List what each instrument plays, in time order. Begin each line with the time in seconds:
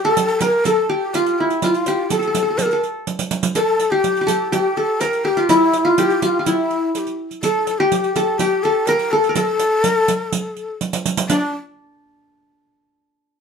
Already playing: qanun E4 G4
0.05 ney A4, qanun A4
0.17 riq
0.28 riq
0.40 ney A#4, qanun A#4, riq
0.65 ney A4, qanun A4, riq
0.90 qanun G4, ney G4
1.13 qanun F4, ney F4 F#4, riq
1.26 riq
1.39 ney E4, qanun E4
1.50 riq
1.62 ney F4, qanun F4, riq
1.74 riq
1.86 qanun G4, riq
2.10 qanun A4, ney A4 A#4, riq
2.19 qanun A4, riq
2.27 qanun A4
2.35 qanun A4, riq
2.43 qanun A4
2.50 qanun A4
2.58 qanun A4, ney C5, riq
2.62 qanun A4, ney A#4
2.71 qanun A4, riq
2.83 riq
3.07 riq
3.19 riq
3.31 riq
3.43 riq
3.55 qanun A4, ney A#4, riq
3.60 ney A4
3.79 riq
3.91 ney G4, qanun G4
4.04 riq
4.17 riq
4.21 qanun G4
4.27 qanun A4, riq
4.52 qanun G4, ney G4, riq
4.77 ney A4, qanun A4, riq
5.00 qanun A#4, ney C5, riq
5.05 ney A#4
5.13 riq
5.25 qanun G4, ney G4 A4
5.37 qanun F4, riq
5.49 ney E4, qanun E4, riq
5.73 riq
5.85 qanun F4, ney F4
5.98 qanun G4, ney A4, riq
6.03 ney G4
6.10 riq
6.22 qanun F4, ney F#4, riq
6.28 ney F4
6.39 qanun F4
6.46 ney E4, qanun E4, riq
6.71 riq
6.95 ney G4 A4, riq
7.07 riq
7.31 riq
7.43 ney A4, qanun A4, riq
7.67 riq
7.71 ney A4
7.78 ney G4, qanun G4
7.92 riq
8.04 riq
8.14 ney A4, qanun A4, riq
8.38 ney G4, qanun G4, riq
8.63 ney A4, qanun A4, riq
8.86 ney A#4, qanun A#4, riq
8.99 riq
9.11 ney A4, qanun A4
9.24 riq
9.29 qanun A#4
9.34 ney A4, qanun A4, riq
9.59 riq
9.84 ney A#4, riq
9.98 ney A4
10.08 riq
10.13 ney A#4
10.26 ney A4
10.32 riq
10.57 riq
10.81 riq
10.93 riq
11.06 riq
11.17 riq
11.29 ney D4, qanun D4, riq